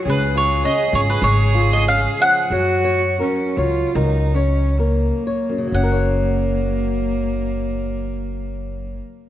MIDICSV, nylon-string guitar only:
0, 0, Header, 1, 2, 480
1, 0, Start_track
1, 0, Key_signature, 6, "major"
1, 0, Tempo, 583658
1, 46, Time_signature, 4, 2, 24, 8
1, 1007, Tempo, 626305
1, 1487, Tempo, 677201
1, 2447, Tempo, 746269
1, 2927, Tempo, 840336
1, 3407, Tempo, 910470
1, 5780, End_track
2, 0, Start_track
2, 0, Title_t, "Nylon-string guitar"
2, 0, Program_c, 0, 24
2, 43, Note_on_c, 0, 49, 70
2, 296, Note_on_c, 0, 65, 57
2, 519, Note_off_c, 0, 65, 0
2, 527, Note_on_c, 0, 61, 60
2, 757, Note_off_c, 0, 61, 0
2, 759, Note_on_c, 0, 65, 53
2, 999, Note_off_c, 0, 65, 0
2, 1022, Note_on_c, 0, 68, 58
2, 1244, Note_off_c, 0, 68, 0
2, 1255, Note_on_c, 0, 65, 57
2, 1485, Note_off_c, 0, 65, 0
2, 1502, Note_on_c, 0, 61, 58
2, 1718, Note_off_c, 0, 61, 0
2, 1732, Note_on_c, 0, 53, 58
2, 1923, Note_off_c, 0, 49, 0
2, 1954, Note_off_c, 0, 53, 0
2, 1963, Note_on_c, 0, 54, 66
2, 2191, Note_on_c, 0, 73, 59
2, 2436, Note_off_c, 0, 73, 0
2, 2441, Note_on_c, 0, 70, 51
2, 2672, Note_off_c, 0, 70, 0
2, 2689, Note_on_c, 0, 73, 57
2, 2922, Note_off_c, 0, 73, 0
2, 2930, Note_on_c, 0, 70, 48
2, 3151, Note_off_c, 0, 70, 0
2, 3159, Note_on_c, 0, 73, 55
2, 3400, Note_off_c, 0, 73, 0
2, 3409, Note_on_c, 0, 70, 49
2, 3643, Note_off_c, 0, 70, 0
2, 3658, Note_on_c, 0, 73, 49
2, 3777, Note_on_c, 0, 42, 52
2, 3824, Note_on_c, 0, 49, 50
2, 3864, Note_off_c, 0, 54, 0
2, 3870, Note_on_c, 0, 54, 52
2, 3893, Note_off_c, 0, 73, 0
2, 3910, Note_on_c, 0, 61, 52
2, 3956, Note_on_c, 0, 70, 50
2, 4001, Note_on_c, 0, 73, 58
2, 5500, Note_off_c, 0, 42, 0
2, 5547, Note_off_c, 0, 49, 0
2, 5593, Note_off_c, 0, 54, 0
2, 5633, Note_off_c, 0, 61, 0
2, 5679, Note_off_c, 0, 70, 0
2, 5724, Note_off_c, 0, 73, 0
2, 5780, End_track
0, 0, End_of_file